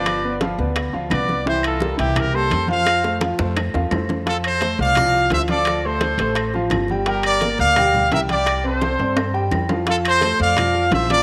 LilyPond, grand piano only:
\new Staff \with { instrumentName = "Grand piano" } { \time 4/4 \key f \major \tempo 4 = 171 <f f' f''>8 <b b' d''>8 <f f' f''>8 <b b' d''>4 <f f' f''>8 <b b' d''>4 | <e e' e''>4 <g g' bes'>8 <e e' e''>4 <g bes g'>4 <f f' f''>8~ | <f f' f''>8 <a a' c''>8 <f f' f''>8 <a a' c''>4 <f f' f''>8 <a a' c''>4 | <f f' f''>4 <a a' c''>4 <f f' f''>4 <f f' f''>8 <f f' f''>8~ |
<f f' f''>8 <a a' c''>4 <a a' c''>4 <f f' f''>4 <g g' g''>8 | <g g' g''>4 <bes bes' d''>4 <g g' g''>4 <g g' g''>8 <g g' g''>8~ | <g g' g''>8 <c' c'' d''>4 <c' c'' d''>4 <g g' g''>4 <f f' f''>8 | <f f' f''>4 <a a' c''>4 <f f' f''>4 <f f' f''>8 <f f' f''>8 | }